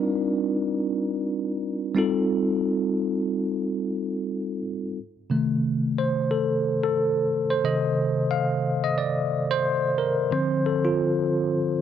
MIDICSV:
0, 0, Header, 1, 2, 480
1, 0, Start_track
1, 0, Tempo, 667408
1, 1659, Time_signature, 4, 2, 24, 8
1, 8497, End_track
2, 0, Start_track
2, 0, Title_t, "Tine electric piano"
2, 0, Program_c, 0, 4
2, 0, Control_c, 0, 64, 127
2, 0, Note_on_c, 0, 55, 71
2, 0, Note_on_c, 0, 60, 63
2, 0, Note_on_c, 0, 62, 68
2, 0, Note_on_c, 0, 63, 60
2, 0, Note_on_c, 0, 65, 53
2, 0, Note_on_c, 0, 70, 77
2, 0, Note_on_c, 0, 74, 58
2, 1386, Note_off_c, 0, 55, 0
2, 1389, Note_off_c, 0, 60, 0
2, 1392, Note_off_c, 0, 62, 0
2, 1394, Note_off_c, 0, 63, 0
2, 1397, Note_off_c, 0, 70, 0
2, 1401, Note_on_c, 0, 55, 69
2, 1407, Note_on_c, 0, 60, 66
2, 1413, Note_on_c, 0, 63, 61
2, 1420, Note_off_c, 0, 65, 0
2, 1420, Note_on_c, 0, 65, 61
2, 1427, Note_on_c, 0, 69, 77
2, 1428, Control_c, 0, 64, 0
2, 1434, Note_off_c, 0, 74, 0
2, 1577, Control_c, 0, 64, 127
2, 3302, Note_off_c, 0, 55, 0
2, 3305, Note_off_c, 0, 60, 0
2, 3308, Note_off_c, 0, 63, 0
2, 3311, Note_off_c, 0, 65, 0
2, 3315, Note_off_c, 0, 69, 0
2, 3588, Control_c, 0, 64, 0
2, 3714, Control_c, 0, 64, 127
2, 3811, Note_on_c, 0, 48, 49
2, 3818, Note_on_c, 0, 51, 47
2, 3821, Note_on_c, 0, 57, 59
2, 4149, Note_off_c, 0, 48, 0
2, 4152, Note_off_c, 0, 51, 0
2, 4154, Note_off_c, 0, 57, 0
2, 4304, Note_on_c, 0, 72, 81
2, 4525, Note_off_c, 0, 72, 0
2, 4538, Note_on_c, 0, 69, 77
2, 4891, Note_off_c, 0, 69, 0
2, 4916, Note_on_c, 0, 69, 91
2, 5396, Note_on_c, 0, 72, 84
2, 5411, Note_off_c, 0, 69, 0
2, 5496, Note_on_c, 0, 48, 53
2, 5501, Note_off_c, 0, 72, 0
2, 5501, Note_on_c, 0, 75, 88
2, 5502, Note_on_c, 0, 51, 48
2, 5505, Note_on_c, 0, 69, 57
2, 5723, Note_off_c, 0, 75, 0
2, 5975, Note_on_c, 0, 77, 100
2, 6356, Note_on_c, 0, 75, 88
2, 6367, Note_off_c, 0, 77, 0
2, 6402, Note_off_c, 0, 75, 0
2, 6457, Note_on_c, 0, 74, 89
2, 6810, Note_off_c, 0, 74, 0
2, 6839, Note_on_c, 0, 72, 94
2, 7179, Note_on_c, 0, 70, 84
2, 7189, Note_off_c, 0, 72, 0
2, 7387, Note_off_c, 0, 48, 0
2, 7390, Note_off_c, 0, 51, 0
2, 7392, Note_off_c, 0, 69, 0
2, 7416, Note_on_c, 0, 50, 59
2, 7422, Note_on_c, 0, 53, 49
2, 7424, Note_on_c, 0, 60, 68
2, 7425, Note_off_c, 0, 70, 0
2, 7425, Note_on_c, 0, 72, 89
2, 7427, Control_c, 0, 64, 0
2, 7560, Control_c, 0, 64, 127
2, 7645, Note_off_c, 0, 72, 0
2, 7668, Note_on_c, 0, 69, 85
2, 7728, Note_off_c, 0, 69, 0
2, 7801, Note_on_c, 0, 65, 86
2, 8107, Note_off_c, 0, 50, 0
2, 8110, Note_off_c, 0, 53, 0
2, 8111, Note_off_c, 0, 60, 0
2, 8249, Note_off_c, 0, 65, 0
2, 8497, End_track
0, 0, End_of_file